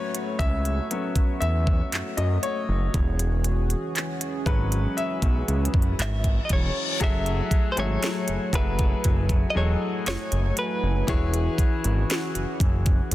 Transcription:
Already playing: F#3 A3 B3 C#4 F#4 B4 C#5
0.15 closed hi-hat
0.39 C#2 E5, kick, closed hi-hat
0.65 closed hi-hat
0.91 F#3 B3 C#4, closed hi-hat
1.16 kick, closed hi-hat
1.40 E2 E5, closed hi-hat
1.67 kick
1.92 F#2, clap, closed hi-hat
2.17 F#2 D#5, closed hi-hat
2.43 C#5, closed hi-hat
2.69 F#1
2.94 E1 E3 C#4 G#4, kick, closed hi-hat
3.19 closed hi-hat
3.44 closed hi-hat
3.70 closed hi-hat
3.96 clap, closed hi-hat
4.21 closed hi-hat
4.46 G#1 F#3 G#3 C#4 B4, kick, closed hi-hat
4.72 closed hi-hat
4.97 E5, closed hi-hat, reverse cymbal
5.22 B1, kick, closed hi-hat
5.48 C#2, closed hi-hat
5.65 closed hi-hat
5.74 F#1, kick
5.82 closed hi-hat
5.99 G#1 E5, clap, closed hi-hat
6.24 kick, closed hi-hat
6.45 D#5
6.49 E1 C#5, kick, closed hi-hat
7.00 F#1 F#3 A3 E4 F#4 G#4 A4 E5 G#5, kick, closed hi-hat
7.26 closed hi-hat
7.51 kick, closed hi-hat
7.72 C5
7.77 G#1 F#3 F#4 G#4 A4 C#5 E5, closed hi-hat
8.03 snare, closed hi-hat
8.28 F#1, closed hi-hat
8.53 F#1 F#3 F#4 G#4 A4 B4 E5, kick, closed hi-hat
8.79 kick, closed hi-hat
9.04 F#1, kick, closed hi-hat
9.29 kick, closed hi-hat
9.50 D#5
9.55 E1 F#3 F#4 G#4 A4 C#5 D#5
10.06 F#1 C#5, snare, closed hi-hat
10.32 F#1, closed hi-hat
10.57 B4, closed hi-hat
10.83 F#1
11.07 E1 E3 C#4 E4 F#4 G#4 C#5, kick, closed hi-hat
11.34 closed hi-hat
11.58 kick, closed hi-hat
11.84 G#1, closed hi-hat
12.10 snare, closed hi-hat
12.35 F#1, closed hi-hat
12.60 F#1, kick, closed hi-hat
12.86 kick, closed hi-hat
13.11 F#1, closed hi-hat

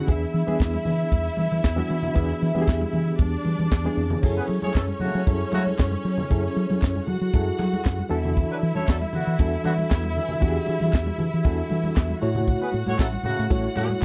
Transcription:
0.07 E2 E3 B3 D4 E4 G#4 E5, kick, closed hi-hat, muted conga, low conga
0.34 E3, open hi-hat
0.47 E3 B3 D4 G#4, closed hi-hat, high conga
0.60 E2, kick, snare, clap, closed hi-hat, muted conga
0.74 high conga
0.85 E3, open hi-hat, muted conga, low conga
1.00 closed hi-hat
1.11 E2, kick, closed hi-hat, muted conga, high conga
1.37 E3, open hi-hat, muted conga, high conga
1.51 E3, closed hi-hat, high conga
1.63 E2, kick, snare, clap, closed hi-hat, muted conga
1.76 E3 B3 D4 F#4, high conga
1.90 E3, open hi-hat, muted conga
2.03 closed hi-hat, low conga
2.15 E2 E3 B3 D4 G#4, kick, closed hi-hat, muted conga, low conga
2.42 E3, open hi-hat
2.54 E3 B3 D4 G4, closed hi-hat, high conga
2.62 G#4
2.67 E2, kick, snare, clap, closed hi-hat, muted conga
2.81 high conga
2.92 E3, open hi-hat, low conga
3.07 closed hi-hat
3.18 E2 D4 D5, kick, closed hi-hat, high conga
3.45 E3, open hi-hat, muted conga, high conga
3.59 E3, closed hi-hat, high conga
3.71 E2, kick, snare, clap, closed hi-hat, muted conga
3.84 E3 B3 D4 G#4, high conga
3.97 F2, open hi-hat, muted conga
4.10 closed hi-hat, low conga
4.23 F#2 F#3 C#4 E4 G#4 A4 C#5, kick, crash, muted conga, low conga
4.37 B3 G#4 B4
4.48 F#3, open hi-hat, muted conga
4.62 F#3 A3 G#4 C#5, high conga
4.74 F#2 E3 C#4 A4, kick, snare, clap, closed hi-hat
4.77 clap
4.88 high conga
5.00 C#3 F#3 A3 F#4, open hi-hat, low conga
5.15 F#3
5.27 F#2 F#3 E4 G#4 A4, kick, closed hi-hat, muted conga, high conga
5.52 C#3 F#3 A3 F#4, clap, open hi-hat, muted conga, high conga
5.67 high conga
5.79 F#2, kick, snare, clap, closed hi-hat
5.80 clap
5.92 high conga
6.04 F#3, open hi-hat, muted conga
6.18 low conga
6.30 F#2 F#3 E4 G#4 A4, kick, closed hi-hat, low conga
6.46 snare
6.56 F#3, open hi-hat
6.70 F#3, high conga
6.82 F#2, kick, snare, clap, closed hi-hat
6.85 clap
6.95 high conga
7.07 F#3 F#4 F#5, open hi-hat, muted conga, low conga
7.21 F#3
7.34 F#2 F#3 E4 G#4 A4, kick, closed hi-hat, muted conga, high conga
7.59 F#3, clap, open hi-hat, muted conga, high conga
7.73 high conga
7.85 F#2, kick, snare, clap, closed hi-hat, muted conga
7.87 clap
7.99 high conga
8.09 E2 E3 D4 E4 F#4 A4 E5, open hi-hat
8.25 low conga
8.37 kick, closed hi-hat, muted conga, low conga
8.50 F#3 D4 B4
8.62 E3, open hi-hat
8.75 E3 C#4 A4 C#5, high conga
8.87 E2 F#3 D4 A4, kick, snare, clap, closed hi-hat, muted conga
8.90 clap
9.02 high conga
9.13 D3 E3 B3 F#4, open hi-hat, muted conga, low conga
9.27 E3
9.39 E2 E3 D4 F#4 A4, kick, closed hi-hat, muted conga, high conga
9.64 D3 E3 B3 F#4, clap, open hi-hat, high conga
9.78 high conga
9.91 E2, kick, snare, clap, closed hi-hat
9.92 clap
10.03 high conga
10.16 E3, open hi-hat, muted conga
10.29 low conga
10.41 E2 E3 D4 F#4 G4, kick, closed hi-hat, low conga
10.48 G#4
10.57 snare
10.66 E3, open hi-hat, muted conga
10.80 E3, high conga
10.93 E2, kick, snare, clap, closed hi-hat, muted conga
10.96 clap
11.06 high conga
11.18 E3, open hi-hat, muted conga, low conga
11.34 E3
11.44 E2 E3 D4 F#4 A4, kick, closed hi-hat, high conga
11.70 E3, open hi-hat, high conga
11.84 high conga
11.96 E2, kick, snare, clap, closed hi-hat
12.09 high conga
12.22 A2 A3 E4 F#4 C#5 F#5, open hi-hat, muted conga
12.35 low conga
12.47 kick, closed hi-hat, low conga
12.61 B3 G#4 B4
12.72 A2, open hi-hat, muted conga
12.86 A2 A3 F#4 C#5, high conga
12.98 A1 F#3 E4 A4, kick, snare, clap, closed hi-hat, muted conga
13.01 clap
13.12 high conga
13.23 A2 C#3 A3 F#4, open hi-hat, muted conga, low conga
13.39 A2
13.50 A1 A3 E4 F#4 C#5, kick, closed hi-hat, muted conga, high conga
13.76 A2 C#3 A3 F#4, clap, open hi-hat, high conga
13.90 high conga
14.02 muted conga

